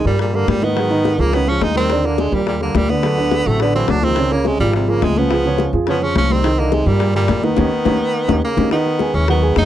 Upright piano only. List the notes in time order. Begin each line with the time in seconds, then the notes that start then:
0.05 G3 G4 A#4
0.34 G3 G4 A#4
0.62 D#3 D#4 D#5
0.76 F#3 F#4 G#4
0.90 D#3 D#4 D#5
1.19 F3 F4 G#4
1.33 C#3 C#4 C#5
1.48 F3 F4 G#4
1.76 G3 G4 A#4
1.91 D3 D4 D5
2.05 D3 D4 D5
2.32 G3 G4 A#4
2.61 G3 G4 A#4
2.90 D3 D4 D5
3.04 F#3 F#4 A4
3.18 D3 D4 D5
3.47 F#3 F#4 A4
3.61 D3 D4 D5
3.75 F#3 F#4 A4
4.03 F3 F4 G#4
4.17 C#3 C#4 C#5
4.32 C#3 C#4 C#5
4.60 F3 F4 G#4
4.88 F3 F4 G#4
5.17 C#3 C#4 C#5
5.31 F3 F4 G#4
5.45 C#3 C#4 C#5
5.73 F3 F4 G#4
5.88 C#3 C#4 C#5
6.02 F3 F4 G#4
6.30 G3 G4 A#4
6.44 D#3 D#4 D#5
6.59 D#3 D#4 D#5
6.87 G3 G4 A#4
7.15 G3 G4 A#4
7.43 D#3 D#4 D#5
7.57 C#4 D#4 G4
7.86 C#4 D#4 G4
8.28 C#4 D#4 G4
8.57 C#4 D#4 G4
8.72 D#3 D#4 D#5
9.00 G#3 G#4 G#5
9.29 F#3 F#4 F#5
9.42 G#3 G#4 G#5